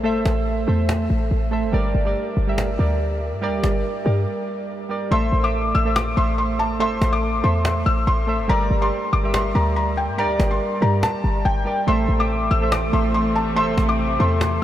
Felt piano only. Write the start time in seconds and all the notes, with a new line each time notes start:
5.12 C6
5.44 D6
5.75 E6
5.96 D6
6.17 C6
6.38 C6
6.59 A5
6.80 C6
7.13 D6
7.44 C6
7.86 E6
8.07 C6
8.49 A#5
8.82 C6
9.13 D6
9.34 C6
9.55 A#5
9.76 A#5
9.97 G5
10.18 A#5
10.51 C6
10.82 A#5
11.03 A5
11.45 G5
11.88 C6
12.20 D6
12.51 E6
12.72 D6
12.93 C6
13.14 C6
13.36 A5
13.56 C6
13.89 D6
14.20 C6